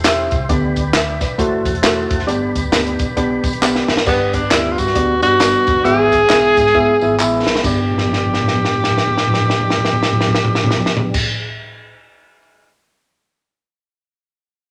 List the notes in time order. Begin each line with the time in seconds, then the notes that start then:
Already playing: E1 C5 E5 G5 C6
0.04 C4 E4 G4 E5, snare, clap, closed hi-hat, tambourine
0.31 C2, kick, closed hi-hat, tambourine
0.49 D2 D3 B3 D4 G4 B4 D5 B5, kick, closed hi-hat, tambourine
0.76 D2, kick, closed hi-hat, tambourine
0.93 D2 E5, snare, clap, closed hi-hat, tambourine
1.21 B1 B4 D5, kick, snare, closed hi-hat, tambourine
1.38 F#1 A3 E4 F#4 C5 E5 F#5 A5, kick, closed hi-hat, tambourine
1.65 E1, kick, closed hi-hat, tambourine
1.75 closed hi-hat
1.82 A3 E4 F#4 C5, snare, clap, closed hi-hat, tambourine
2.10 E1, kick, closed hi-hat, tambourine
2.19 snare
2.27 G1 G2 B3 D4 G4 B4 D5 G5 B5, closed hi-hat, tambourine
2.56 D2, kick, closed hi-hat, tambourine
2.72 D2 B3 D4 G4 D5, snare, clap, closed hi-hat, tambourine
2.87 closed hi-hat
2.99 B1, kick, closed hi-hat, tambourine
3.17 B3 D4 G4 D5, kick, closed hi-hat, tambourine
3.44 B1, kick, closed hi-hat, tambourine
3.53 closed hi-hat
3.62 B3 D4 G4 D5, snare, clap, tambourine
3.76 snare
3.88 F#1, snare, tambourine
3.97 snare
4.06 G1 G2 G3 B3 D4 G4 B4 D5, kick, crash, tambourine
4.33 D4, kick, closed hi-hat, tambourine
4.51 D2 B3 D4 E4 G4 D5, snare, clap, closed hi-hat, tambourine
4.71 F4
4.78 G2 F#4, kick, closed hi-hat, tambourine
4.87 snare
4.95 D2 B3 D4 G4 D5, kick, closed hi-hat, tambourine
5.22 G2 B3 D4 F#4 G4 D5, closed hi-hat, tambourine
5.40 G1 G3 B3 D4 D5, snare, clap, closed hi-hat, tambourine
5.67 E1, kick, closed hi-hat, tambourine
5.76 F#1
5.85 G#1 G#2 G#3 B3 E4 G#4 E5, closed hi-hat, tambourine
6.12 kick, closed hi-hat, tambourine
6.29 B1 B3 E4 G#4 E5, snare, clap, closed hi-hat, tambourine
6.57 G#2, kick, closed hi-hat, tambourine
6.67 snare
6.75 B3 E4 G#4 E5, kick, tambourine
7.01 G#1 B3 E4 G#4 E5, tambourine
7.20 A1 B3 E4 G#4 E5 B5, clap, tambourine
7.47 B1, snare, tambourine
7.55 snare
7.62 G1 G2 G3 B3 D4 G4 D5, kick, crash, tambourine
7.91 floor tom
7.98 snare
8.05 floor tom
8.13 snare
8.23 floor tom
8.34 snare
8.41 floor tom
8.48 snare
8.54 floor tom
8.65 snare
8.75 floor tom
8.84 snare
8.90 floor tom
8.98 snare
9.07 floor tom
9.18 snare
9.27 floor tom
9.34 snare
9.41 floor tom
9.50 snare
9.60 floor tom
9.70 snare
9.77 floor tom
9.85 snare
9.93 floor tom
10.03 snare
10.13 floor tom
10.21 snare
10.27 floor tom
10.35 snare
10.45 floor tom
10.55 snare
10.64 floor tom
10.71 snare
10.77 floor tom
10.86 snare
10.97 floor tom
11.14 kick, crash